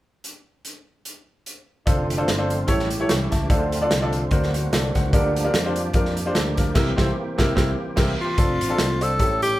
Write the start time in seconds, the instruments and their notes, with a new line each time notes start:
0.24 closed hi-hat
0.65 closed hi-hat
1.05 closed hi-hat
1.46 closed hi-hat
1.86 fingered electric bass F1, tonewheel organ D3 A3 C4 F4, french horn section F3 A3 C4 D4, grand piano D4 F4 A4 C5, kick, closed hi-hat
2.10 closed hi-hat
2.17 grand piano D4 F4 A4 C5
2.28 fingered electric bass G1, snare, closed hi-hat
2.38 grand piano D4 F4 A4 C5
2.50 closed hi-hat
2.67 fingered electric bass A1, grand piano A2 E4 G4 A4 C#5, tonewheel organ E3 C#4 G4, french horn section G3 A3 C#4 E4, kick, closed hi-hat
2.79 snare
2.90 closed hi-hat
3.00 grand piano E4 G4 A4 C#5
3.09 fingered electric bass C2, grand piano G5 C#6, snare, closed hi-hat
3.31 fingered electric bass C#2, grand piano E5 A5, kick, snare, closed hi-hat
3.50 fingered electric bass D2, grand piano D3 D4 F4 A4 C5, tonewheel organ D3 A3 C4 F4, french horn section F3 C4 D4, kick, closed hi-hat
3.72 closed hi-hat
3.81 grand piano D4 F4 A4 D5
3.91 fingered electric bass C2, snare, closed hi-hat
4.01 grand piano D4 F4 A4 D5
4.13 closed hi-hat
4.31 fingered electric bass D2, grand piano D3 D4 F#4 A#4 C5, french horn section F#3 A#3 C4, tonewheel organ A#3 F#4, kick, closed hi-hat
4.43 snare
4.54 grand piano F#4 C5, closed hi-hat
4.73 fingered electric bass C2, grand piano A4 D5, snare, closed hi-hat
4.95 fingered electric bass C#2, grand piano C5 F#5, kick, snare, closed hi-hat
5.13 fingered electric bass D2, grand piano D3 D4 F4 G4 A#4, french horn section F3 G3 A#3, tonewheel organ F3 D4 G4, kick, closed hi-hat
5.36 closed hi-hat
5.44 grand piano D4 F4 G4 A#4
5.54 fingered electric bass F2, snare, closed hi-hat
5.65 grand piano D4 F4 G4 C5
5.76 closed hi-hat
5.93 fingered electric bass F2, grand piano D4 F4 G4 A#4, kick, closed hi-hat
6.05 snare
6.17 closed hi-hat
6.26 grand piano D4 F4 G4 C5
6.35 fingered electric bass D2, grand piano A4 D5, snare, closed hi-hat
6.57 grand piano F4 A#4, kick, snare, closed hi-hat
6.74 fingered electric bass C2, grand piano C3 C4 E4 G4 A#4, french horn section E3 C4, tonewheel organ E3 C4, kick, snare, crash
6.96 fingered electric bass C2, grand piano C4 E4 G4 C5, kick, snare
7.38 fingered electric bass C2, grand piano C4 E4 G4 A#4, kick, snare
7.55 fingered electric bass C2, grand piano C4 E4 G4 A#4, kick, snare
7.96 fingered electric bass C2, grand piano C4 E4 G4 A#4, kick, snare, crash
8.21 tenor saxophone F4
8.37 fingered electric bass F1, french horn section D3 F3 A3 C4, grand piano C4 D4 F4 A4, kick, closed hi-hat
8.61 fingered electric bass A1, closed hi-hat
8.69 grand piano C4 D4 F4 A4
8.78 fingered electric bass C2, snare, closed hi-hat
9.01 grand piano C4 D4 F4 C5, tenor saxophone A4, closed hi-hat
9.19 fingered electric bass A1, grand piano A2 C#4 E4 G4 A4, french horn section E3 G3 C#4, kick, closed hi-hat
9.42 tenor saxophone G4, closed hi-hat